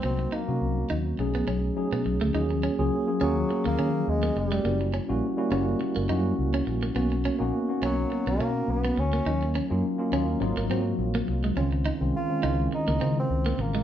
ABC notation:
X:1
M:4/4
L:1/16
Q:"Swing 16ths" 1/4=104
K:Ebdor
V:1 name="Tine electric piano"
[G,B,CEG]3 [G,B,CDEG]4- [G,B,CDEG] [^F,=A,^C^D^G]4 [F,A,CDG]4 | [G,B,DFA]3 [G,B,DFA]2 [G,B,DFA] [G,B,DFA]4 [F,G,B,DFA]4- [F,G,B,DFA] z | [=G,B,D_F_G]3 [=G,B,DF_G]2 [=G,B,DF_G] [=G,B,DF_G]4 [=G,B,DF_G]4- [=G,B,DF_G] z | [^A,=B,^C^D^F]3 [A,B,CDF]2 [A,B,CDF] [A,B,CDF]4 [A,B,CDF]4- [A,B,CDF] z |
[G,B,DEF]3 [G,B,DEF]2 [G,B,DEF] [G,B,DEF]2 [G,B,CEF]2 [G,B,CEG]4- [G,B,CEG] z | [E,A,CDF]3 [E,A,CDF]2 [E,A,CDF] [E,A,CD=EF]4 [D,_E,A,CF]4- [D,E,A,CF] z |]
V:2 name="Clean electric guitar"
C z E z3 E z2 =B, ^C z2 B, z =A, | E z D z3 D z2 B, D z2 B, z A, | B, z D z3 D z2 B, E z2 D z B, | =B, z ^C z3 C z2 B, C z2 B, z ^A, |
E z D z3 D z2 B, C z2 B, z A, | D z E z3 E z2 B, C z2 B, z A, |]
V:3 name="Bassoon"
C2 B,4 z8 z2 | z6 G,3 B,3 A,2 =G,2- | =G,2 z12 z2 | z6 ^F,3 ^A,3 =B,2 ^C2- |
^C2 z12 z2 | z4 F4 E3 C3 B,2 |]
V:4 name="Fingered electric bass" clef=bass
C,,2 z C, C,,2 E,,2 =B,,,2 B,,,2 z =B,, B,,, =D,, | z3 D,, z2 E,,2 z E,, E,2 E,,2 F,,,2 | G,,,3 B,,, z2 G,,,2 z G,,, G,,2 D,,2 B,,,2 | =B,,,3 ^A,,, z2 B,,,2 z B,,, =B,,2 B,,,2 =D,,2 |
E,,3 G,, z2 E,,2 A,,, A,,, A,,2 B,,,2 C,,2 | D,,3 C,, z2 D,,2 z D,, D,2 D,,2 =A,,,2 |]